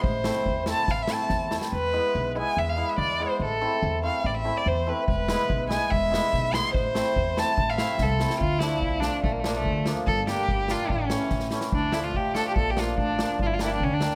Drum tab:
SD |--oo--o-|o-o-o-oo|--------|--------|
BD |o---o---|o---o---|--------|--------|

SD |--------|--------|--o---o-|--ooo-o-|
BD |--------|--------|o---o---|o---o---|

SD |--o---o-|--o-o-oo|--o---o-|--o---o-|
BD |o---o---|o---o---|o---o---|o---o---|

SD |--o---o-|--o-oooo|--o---o-|--o---o-|
BD |o---o---|o---o---|o---o---|o---o---|

SD |--o---o-|
BD |o---o---|